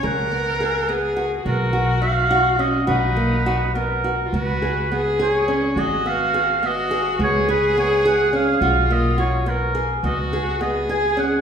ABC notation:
X:1
M:5/8
L:1/16
Q:1/4=105
K:C#mix
V:1 name="Oboe"
f8 z2 | A4 e4 d2 | B6 A4 | B6 c4 |
d2 e4 d3 z | c2 B2 c2 f2 e2- | e2 d2 c2 A3 z | d2 z2 d2 g2 f2 |]
V:2 name="Viola"
A6 G4 | F8- F2 | D8 z3/2 E/2 | F4 G6 |
F6 F4 | G8- G2 | E8 z2 | F4 G6 |]
V:3 name="Nylon-string guitar"
G2 B,2 G2 B,2 F2 | B,2 F2 D2 F2 C2 | F2 A,2 F2 B,2 F2 | B,2 G2 B,2 G2 C2 |
G2 B,2 G2 B,2 G2 | B,2 G2 B,2 G2 C2 | F2 A,2 F2 B,2 G2 | B,2 G2 B,2 G2 C2 |]
V:4 name="Upright bass" clef=bass
C,,8- C,,2 | B,,,8- B,,,2 | B,,,8- B,,,2 | C,,8- C,,2 |
G,,,8- G,,,2 | C,,8- C,,2 | B,,,8- B,,,2 | C,,8- C,,2 |]